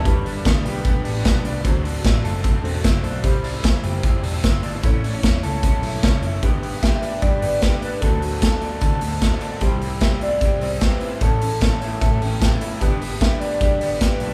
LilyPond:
<<
  \new Staff \with { instrumentName = "Soft synth lead" } { \time 4/4 \key g \major \tempo 4 = 150 r1 | r1 | r1 | r1 |
r4 e''4 d''8 d''8 b'8 b'8 | a'2. r4 | r4 e''8 d''4 d''8 b'4 | a'2. r4 |
r4 e''8 d''4 d''8 b'4 | }
  \new Staff \with { instrumentName = "Synth keys" } { \time 4/4 \key g \major << { r1 | r1 | r1 | r1 |
r1 | r1 | r1 | r4. cis''8 e''8 g''8 a''8 b''8 |
r1 | } \\ { <d' g' b'>1 | <d' fis' c''>2~ <d' fis' c''>8 <d' fis' a'>4. | <e' g' c''>1 | <e' a' cis''>2. <e' a' cis''>4 |
<d' g' b'>1 | <d' fis' c''>1 | <e' g' c''>2~ <e' g' c''>8 <c' e' g'>4. | <e' a' cis''>2. <e' a' b'>4 |
<d' g' b'>1 | } >> }
  \new Staff \with { instrumentName = "Clean electric guitar" } { \time 4/4 \key g \major g8 d'8 b8 g'8 b8 d'8 b8 d'8 | fis8 d'8 c'8 a'8 c'8 c'16 d'16 c'8 d'8 | g8 d'16 e'16 c'8 g'8 c'8 d'16 e'16 c'8 d'16 e'16 | cis'8 d'16 e'16 cis'8 a'8 cis'8 e'8 cis'8 e'8 |
<b g'>8 b8 g'8 d'8 g'8 b8 g'8 d'8 | <fis a'>8 c'8 a'8 d'8 a'8 c'8 a'8 d'8 | <g g'>8 c'8 g'8 e'8 g'8 c'8 g'8 e'8 | <cis' a'>8 cis'8 a'8 e'8 a'8 cis'8 g'16 a'16 e'8 |
<b g'>8 b8 g'8 d'8 g'8 b8 g'8 d'8 | }
  \new Staff \with { instrumentName = "Overdriven electric guitar" } { \time 4/4 \key g \major <g d' g' b'>8 <d' g' b'>8 <g d' g' b'>8 <d' g' b'>8 <g d' g' b'>8 <d' g' b'>8 <g d' g' b'>8 <d' g' b'>8 | <d a c' fis' c''>8 <c' fis' c''>8 <a c' fis' c''>8 <c' fis' c''>8 <d a c' fis' c''>8 <c' fis' c''>8 <a c' fis' c''>8 <c' fis' c''>8 | <c e g c' e' c''>8 <g c' e' c''>8 <g c' e' c''>8 <g c' e' c''>8 <c e g c' e' c''>8 <g c' e' c''>8 <g c' e' c''>8 <g c' e' c''>8 | <a, e a cis' e' cis''>8 <a cis' e' cis''>8 <a cis' e' cis''>8 <a cis' e' cis''>8 <a, e a cis' e' cis''>8 <a cis' e' cis''>8 <a cis' e' cis''>8 <a cis' e' cis''>8 |
<g d' g' b'>8 <d' g' b'>8 <g d' g' b'>8 <d' g' b'>8 <g d' g' b'>8 <d' g' b'>8 <g d' g' b'>8 <d' g' b'>8 | <d a c' fis' a'>8 <c' fis' a'>8 <d a c' fis' a'>8 <c' fis' a'>8 <a c' fis' a'>8 <c' fis' a'>8 <d a c' fis' a'>8 <c' fis' a'>8 | <c e g c' e' c''>8 <g c' e' c''>8 <c e g c' e' c''>8 <g c' e' c''>8 <g c' e' c''>8 <g c' e' c''>8 <c e g c' e' c''>8 <g c' e' c''>8 | <a, e a cis' e' a'>8 <a cis' e' a'>8 <a, e a cis' e' a'>8 <a cis' e' a'>8 <a cis' e' a'>8 <a cis' e' a'>8 <a, e a cis' e' a'>8 <a cis' e' a'>8 |
<g d' g' b'>8 <d' g' b'>8 <g d' g' b'>8 <d' g' b'>8 <g d' g' b'>8 <d' g' b'>8 <g d' g' b'>8 <d' g' b'>8 | }
  \new Staff \with { instrumentName = "Picked electric bass" } { \clef bass \time 4/4 \key g \major g,,4 d,8 b,,4 a,,8 b,,8 c,8 | d,4 a,,8 fis,,4 e,,8 fis,,8 b,,8 | c,4 g,,8 fis,,4 e,,8 fis,,8 g,,8 | a,,4 e,8 cis,4 b,,8 cis,8 fis,,8 |
g,,2 g,8 g,,4 r8 | d,2 d8 d,4 r8 | c,2 c8 c,4 r8 | a,,2 a,8 a,,4 r8 |
g,,2 g,8 g,,4 b,,8 | }
  \new DrumStaff \with { instrumentName = "Drums" } \drummode { \time 4/4 <hh bd>8 hho8 <hh bd sn>8 hho8 <hh bd>8 hho8 <hh bd sn>8 hho8 | <hh bd>8 hho8 <hh bd sn>8 hho8 <hh bd>8 hho8 <hh bd sn>8 hho8 | <hh bd>8 hho8 <hh bd sn>8 hho8 <hh bd>8 hho8 <hh bd sn>8 hho8 | <hh bd>8 hho8 <hh bd sn>8 hho8 <hh bd>8 hho8 <hh bd sn>8 hho8 |
<hh bd>8 hho8 <hh bd sn>8 hho8 <hh bd>8 hho8 <hh bd sn>8 hho8 | <hh bd>8 hho8 <hh bd sn>8 hho8 <hh bd>8 hho8 <hh bd sn>8 hho8 | <hh bd>8 hho8 <hh bd sn>8 hho8 <hh bd>8 hho8 <hh bd sn>8 hho8 | <hh bd>8 hho8 <hh bd sn>8 hho8 <hh bd>8 hho8 <hh bd sn>8 hho8 |
<hh bd>8 hho8 <hh bd sn>8 hho8 <hh bd>8 hho8 <hh bd sn>8 hho8 | }
>>